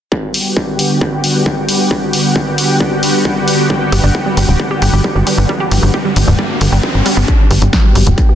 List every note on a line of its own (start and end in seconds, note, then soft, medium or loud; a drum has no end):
0.12 7.24 D3 medium
0.12 7.24 G3 medium
0.12 7.24 B3 medium
0.12 7.24 F#4 medium
0.12 7.24 G4 medium
0.12 kick loud
0.34 open hi-hat medium
0.57 kick loud
0.79 open hi-hat medium
1.01 kick loud
1.24 open hi-hat medium
1.46 kick loud
1.69 open hi-hat loud
1.91 kick loud
2.13 open hi-hat loud
2.36 kick loud
2.58 open hi-hat loud
2.80 kick loud
3.03 open hi-hat loud
3.25 kick loud
3.48 open hi-hat loud
3.70 3.73 G3 medium
3.70 kick loud
3.70 riser medium
3.92 4.00 G1 medium
3.92 3.98 G4 medium
3.92 open hi-hat loud
4.04 4.12 G1 medium
4.04 4.09 D4 medium
4.15 kick loud
4.26 4.29 G3 medium
4.37 4.45 G1 medium
4.37 4.41 G3 medium
4.37 open hi-hat loud
4.48 4.56 D1 medium
4.48 4.57 G2 medium
4.60 kick loud
4.71 4.76 G4 medium
4.82 4.90 G1 medium
4.82 4.88 G4 medium
4.82 open hi-hat loud
4.93 5.01 G1 medium
5.04 5.13 G3 medium
5.04 kick loud
5.15 5.24 G1 medium
5.15 5.19 G3 medium
5.27 5.30 G3 medium
5.27 open hi-hat loud
5.38 5.46 G1 medium
5.49 5.58 G3 loud
5.49 kick loud
5.60 5.66 G4 medium
5.71 5.79 G1 medium
5.71 open hi-hat loud
5.83 5.91 G1 medium
5.83 5.88 F#3 medium
5.94 5.97 G4 medium
5.94 kick loud
6.05 6.08 G3 medium
6.16 6.24 G1 medium
6.16 open hi-hat loud
6.27 6.35 D1 medium
6.27 6.36 G2 loud
6.39 6.44 G3 medium
6.39 kick loud
6.61 6.69 G1 medium
6.61 6.70 D3 medium
6.61 open hi-hat loud
6.72 6.80 G1 medium
6.72 6.81 G3 medium
6.83 6.89 G2 medium
6.83 kick loud
6.95 7.03 G1 medium
7.06 7.09 G3 medium
7.06 open hi-hat loud
7.17 7.25 G1 medium
7.17 7.23 B3 medium
7.28 8.35 D3 medium
7.28 7.32 G3 medium
7.28 8.35 G3 medium
7.28 8.35 B3 medium
7.28 8.35 F#4 medium
7.28 8.35 G4 medium
7.28 kick loud
7.28 closed hi-hat medium
7.51 7.59 G1 medium
7.51 7.56 G4 medium
7.51 open hi-hat loud
7.62 7.70 G1 medium
7.62 7.67 D4 medium
7.62 closed hi-hat medium
7.73 kick loud
7.73 snare loud
7.73 closed hi-hat medium
7.84 7.88 G3 medium
7.95 8.03 G1 medium
7.95 7.99 G3 medium
7.95 open hi-hat loud
8.07 8.15 D1 medium
8.07 8.15 G2 medium
8.07 closed hi-hat medium
8.18 kick loud
8.18 closed hi-hat medium
8.29 8.35 G4 medium